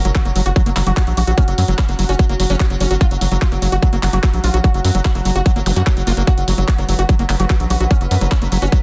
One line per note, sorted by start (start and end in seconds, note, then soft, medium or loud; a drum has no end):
0.00 8.83 F#3 medium
0.00 6.29 F#4 medium
0.00 impact medium
0.05 0.11 F#1 medium
0.05 0.09 F#3 medium
0.05 0.07 F#3 medium
0.05 closed hi-hat medium
0.15 0.19 F#4 medium
0.15 kick loud
0.15 clap loud
0.15 closed hi-hat soft
0.25 0.31 F#1 medium
0.25 0.30 F#3 medium
0.25 0.28 A#3 medium
0.25 closed hi-hat medium
0.36 0.42 F#1 loud
0.36 0.41 F#3 medium
0.36 0.40 F#3 medium
0.36 open hi-hat medium
0.46 0.52 F#1 medium
0.46 0.49 F#4 loud
0.46 0.50 F#4 medium
0.46 closed hi-hat medium
0.56 0.62 F#3 medium
0.56 0.60 F#3 medium
0.56 kick loud
0.56 closed hi-hat medium
0.66 0.72 F#1 medium
0.66 0.71 F#3 medium
0.66 0.70 A#3 loud
0.66 closed hi-hat medium
0.76 0.82 F#1 loud
0.76 0.80 F#3 medium
0.76 0.81 F#3 medium
0.76 clap medium
0.76 open hi-hat loud
0.87 0.93 F#1 loud
0.87 0.92 F#3 medium
0.87 0.91 F#4 loud
0.87 closed hi-hat medium
0.97 1.01 F#3 medium
0.97 1.02 F#4 medium
0.97 kick loud
0.97 clap loud
0.97 closed hi-hat medium
1.07 1.13 A#1 medium
1.07 1.11 F#3 medium
1.07 closed hi-hat medium
1.17 1.23 A#1 loud
1.17 1.21 F#3 medium
1.17 1.22 F#4 medium
1.17 open hi-hat loud
1.27 1.33 A#1 medium
1.27 1.32 F#3 medium
1.27 1.31 F#4 loud
1.27 closed hi-hat medium
1.38 1.41 F#3 medium
1.38 1.42 C#4 loud
1.38 kick loud
1.38 closed hi-hat medium
1.48 1.54 F#1 medium
1.48 1.52 F#3 medium
1.48 closed hi-hat medium
1.58 1.64 F#2 loud
1.58 1.62 F#3 medium
1.58 open hi-hat loud
1.68 1.74 F#1 medium
1.68 1.70 F#3 medium
1.68 1.73 F#3 medium
1.68 closed hi-hat medium
1.78 1.83 C#4 medium
1.78 kick loud
1.78 clap loud
1.89 1.95 F#1 medium
1.89 1.93 F#3 medium
1.89 1.91 A#3 medium
1.89 closed hi-hat medium
1.99 2.05 F#1 loud
1.99 2.04 F#3 medium
1.99 2.03 F#3 medium
1.99 open hi-hat loud
2.09 2.15 F#1 medium
2.09 2.13 C#4 loud
2.09 2.13 F#4 loud
2.09 closed hi-hat medium
2.19 2.24 F#3 medium
2.19 2.25 F#3 medium
2.19 kick loud
2.19 closed hi-hat medium
2.29 2.35 F#1 medium
2.29 2.34 F#3 medium
2.29 2.33 A#3 loud
2.29 closed hi-hat medium
2.40 2.46 F#1 loud
2.40 2.43 F#3 medium
2.40 2.44 F#3 medium
2.40 open hi-hat loud
2.50 2.56 F#1 medium
2.50 2.55 F#3 medium
2.50 2.54 C#4 medium
2.50 closed hi-hat medium
2.60 2.64 F#3 medium
2.60 2.66 F#4 medium
2.60 kick loud
2.60 clap loud
2.60 closed hi-hat medium
2.70 2.76 F#1 medium
2.70 2.75 F#3 medium
2.70 closed hi-hat medium
2.80 2.86 F#1 loud
2.80 2.84 F#3 medium
2.80 2.85 C#4 medium
2.80 open hi-hat medium
2.91 2.97 G1 medium
2.91 2.95 F#3 medium
2.91 2.94 F#4 loud
2.91 closed hi-hat medium
3.01 3.05 F#3 medium
3.01 3.05 F4 loud
3.01 kick loud
3.01 closed hi-hat medium
3.11 3.17 F#1 medium
3.11 3.15 F#3 medium
3.11 closed hi-hat soft
3.21 3.27 F#1 loud
3.21 3.25 F#3 medium
3.21 3.26 F#3 medium
3.21 open hi-hat loud
3.31 3.37 F#1 medium
3.31 3.36 F#3 medium
3.31 3.34 F#3 medium
3.31 closed hi-hat medium
3.42 3.46 F4 medium
3.42 kick loud
3.42 clap loud
3.42 closed hi-hat soft
3.52 3.58 F#1 medium
3.52 3.56 F#3 medium
3.52 3.54 A#3 medium
3.52 closed hi-hat medium
3.62 3.68 F#1 loud
3.62 3.68 F#3 medium
3.62 3.66 F#3 medium
3.62 open hi-hat loud
3.72 3.78 F#1 medium
3.72 3.76 F#4 loud
3.72 3.77 F#4 loud
3.72 closed hi-hat medium
3.83 3.88 F#3 medium
3.83 3.87 F#3 medium
3.83 kick loud
3.83 closed hi-hat medium
3.93 3.99 F#1 medium
3.93 3.97 F#3 medium
3.93 3.96 A#3 loud
3.93 closed hi-hat medium
4.03 4.09 F#1 loud
4.03 4.07 F#3 medium
4.03 clap medium
4.03 open hi-hat loud
4.13 4.19 F#1 medium
4.13 4.19 F#3 medium
4.13 4.17 F#4 medium
4.13 closed hi-hat medium
4.23 4.28 F#3 medium
4.23 4.29 F#4 medium
4.23 kick loud
4.23 clap loud
4.23 closed hi-hat medium
4.34 4.40 A#1 medium
4.34 4.38 F#3 medium
4.34 closed hi-hat medium
4.44 4.50 A#1 loud
4.44 4.47 F#3 medium
4.44 4.48 F4 medium
4.44 open hi-hat loud
4.54 4.60 A#1 medium
4.54 4.58 F#3 medium
4.54 4.58 F#4 loud
4.54 closed hi-hat medium
4.64 4.68 F#3 medium
4.64 4.68 F#4 medium
4.64 kick loud
4.64 closed hi-hat medium
4.74 4.80 F#1 medium
4.74 4.79 F#3 medium
4.74 closed hi-hat soft
4.85 4.91 F#2 loud
4.85 4.88 F#3 medium
4.85 4.89 F#3 medium
4.85 open hi-hat loud
4.95 5.01 F#1 medium
4.95 4.97 F#3 medium
4.95 4.99 F#3 medium
4.95 closed hi-hat medium
5.05 5.09 F#4 medium
5.05 kick loud
5.05 clap loud
5.15 5.21 F#1 medium
5.15 5.20 F#3 medium
5.15 5.17 A#3 medium
5.15 closed hi-hat medium
5.25 5.31 F#1 loud
5.25 5.31 F#3 medium
5.25 5.30 F#3 medium
5.25 open hi-hat loud
5.36 5.42 F#1 medium
5.36 5.39 F#4 loud
5.36 5.40 F#4 loud
5.36 closed hi-hat medium
5.46 5.51 F#3 medium
5.46 5.50 F#3 medium
5.46 kick loud
5.46 closed hi-hat medium
5.56 5.62 G1 medium
5.56 5.60 F#3 medium
5.56 5.60 A#3 loud
5.56 closed hi-hat medium
5.66 5.72 F#1 loud
5.66 5.72 F#3 medium
5.66 5.71 F#3 medium
5.66 open hi-hat loud
5.66 zap medium
5.76 5.82 F#2 medium
5.76 5.82 F#3 medium
5.76 5.81 F#4 loud
5.76 closed hi-hat medium
5.87 5.90 F#3 loud
5.87 5.91 F#3 medium
5.87 kick loud
5.87 clap loud
5.87 closed hi-hat medium
5.97 6.03 F#1 medium
5.97 6.01 F#3 medium
5.97 closed hi-hat soft
6.07 6.13 F#1 loud
6.07 6.13 A#3 medium
6.07 6.11 F4 medium
6.07 open hi-hat loud
6.17 6.23 F#1 medium
6.17 6.22 F#3 medium
6.17 6.23 A#3 medium
6.17 closed hi-hat medium
6.27 6.31 F#3 medium
6.27 6.32 F#4 loud
6.27 8.83 B4 medium
6.27 kick loud
6.27 closed hi-hat medium
6.38 6.44 F#1 medium
6.38 6.42 F#3 medium
6.38 closed hi-hat soft
6.48 6.54 F#1 loud
6.48 6.52 F#3 medium
6.48 open hi-hat loud
6.58 6.64 F#1 medium
6.58 6.62 F#3 medium
6.58 6.60 F#3 medium
6.58 closed hi-hat medium
6.68 6.73 F#4 medium
6.68 kick loud
6.68 clap loud
6.68 closed hi-hat soft
6.78 6.84 F#1 medium
6.78 6.83 F#3 medium
6.78 6.81 A#3 medium
6.78 closed hi-hat medium
6.89 6.95 F#1 loud
6.89 6.93 F#3 medium
6.89 6.94 F#3 medium
6.89 open hi-hat loud
6.99 7.05 F#1 medium
6.99 7.03 F#4 loud
6.99 closed hi-hat soft
7.09 7.13 F#3 medium
7.09 7.15 F#3 medium
7.09 kick loud
7.09 closed hi-hat medium
7.19 7.25 F#1 medium
7.19 7.24 F#3 medium
7.19 7.23 A#3 loud
7.19 closed hi-hat medium
7.29 7.35 F#1 loud
7.29 7.34 F#3 medium
7.29 7.32 A#3 medium
7.29 clap medium
7.29 open hi-hat loud
7.40 7.46 F#1 loud
7.40 7.45 F#3 medium
7.40 7.44 F#4 loud
7.40 closed hi-hat medium
7.50 7.54 F#3 medium
7.50 7.55 F#4 medium
7.50 kick loud
7.50 clap loud
7.50 closed hi-hat medium
7.60 7.66 A#1 medium
7.60 7.64 F#3 medium
7.60 closed hi-hat medium
7.70 7.76 A#1 loud
7.70 7.74 F#3 medium
7.70 7.75 F#4 medium
7.70 open hi-hat loud
7.80 7.86 A#1 medium
7.80 7.85 F#3 medium
7.80 7.84 F#4 loud
7.80 closed hi-hat medium
7.91 7.94 F#3 medium
7.91 7.95 C#4 loud
7.91 kick loud
7.91 closed hi-hat medium
8.01 8.07 F#1 medium
8.01 8.05 F#3 medium
8.01 closed hi-hat medium
8.11 8.17 F#2 loud
8.11 8.15 F#3 medium
8.11 open hi-hat loud
8.21 8.27 F#1 medium
8.21 8.26 F#3 medium
8.21 8.24 F#3 medium
8.21 closed hi-hat medium
8.31 8.36 C#4 medium
8.31 kick loud
8.31 clap loud
8.42 8.48 F#1 medium
8.42 8.46 F#3 medium
8.42 8.44 A#3 medium
8.42 closed hi-hat medium
8.52 8.58 F#1 loud
8.52 8.56 F#3 medium
8.52 8.57 F#3 medium
8.52 open hi-hat medium
8.62 8.68 F#1 medium
8.62 8.66 C#4 loud
8.62 8.66 F#4 loud
8.62 closed hi-hat medium
8.72 8.77 F#3 medium
8.72 8.78 F#3 medium
8.72 kick loud
8.72 closed hi-hat medium